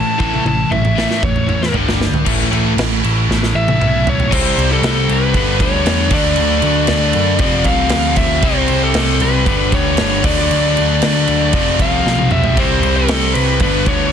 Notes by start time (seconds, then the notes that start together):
Already playing: A2 E3 A3 C#4 E4 A4 A5
0.19 A1 A2 E3 A3 C#4 E4 A4, kick
0.34 high tom
0.45 A1 A2 E3 A5, high tom
0.70 A1 A2 E3 E5, mid tom
0.85 mid tom
0.96 A2 E3 A3, snare
1.11 snare
1.23 A1 A2 E3 C#5, kick, mid tom
1.36 mid tom
1.48 A2 E3 A3 C#4 E4 A4, mid tom
1.63 snare
1.72 G1 G2 D3 G3 D4 G4, floor tom
1.76 D5
1.89 snare
1.99 G2 D3, snare
2.14 floor tom
2.26 A1 A2 E3 A3 C#4 E4 A4, kick, crash
2.41 snare
2.51 A1 A2 E3 A3, crash
2.77 A1, snare, crash
3.03 A1 A2 E3 A3 C#4 E4 A4, crash
3.29 A1, snare
3.43 snare
3.55 A1 E5
3.68 high tom
3.80 B1 A2 E3 A3 C#4 E4 A4, mid tom
4.07 C#5, floor tom
4.20 floor tom
4.30 C2 C3 G3 C4 E4 C5, kick, crash
4.58 C2, crash
4.72 A4
4.83 C2, snare, crash
5.09 C2 B4, crash
5.34 G1 G2 D3 G3 B3 D4, kick, crash
5.60 D2 C#5, kick, crash
5.86 E2, snare, crash
6.09 D2 D3 F#3 A3 D4, kick, crash
6.14 D5
6.36 D2, crash
6.62 D2, crash
6.87 D2, snare, crash
7.13 F#2, crash
7.39 F1 F2 C3 F3 A3 C4 D5, kick, crash
7.64 C2 F5, kick, crash
7.89 D2, snare, crash
8.16 E5, kick, crash
8.42 C2 C3 G3 C4 E4 C5, kick, crash
8.68 C2, crash
8.83 A4
8.94 C2, snare, crash
9.20 C2 B4, crash
9.45 G1 G2 D3 G3 B3 D4, kick, crash
9.72 D2 C#5, kick, crash
9.97 G1, snare, crash
10.23 D2 D3 F#3 A3 D4 D5, kick, crash
10.38 snare
10.51 D2, crash
10.77 D2, crash
11.02 D2, snare, crash
11.27 D2, crash
11.52 F1 F2 C3 F3 A3 C4, kick, crash
11.79 C2 F5, kick, crash
12.05 B1, snare
12.18 high tom
12.31 E5, mid tom
12.44 floor tom
12.57 C2 C3 G3 C4 E4 C5, kick, crash
12.83 C2, crash
12.96 A4
13.08 C2, snare, crash
13.34 C2 B4, crash
13.60 G1 G2 D3 G3 B3 D4 B4, kick, crash
13.86 D2 C#5, kick, crash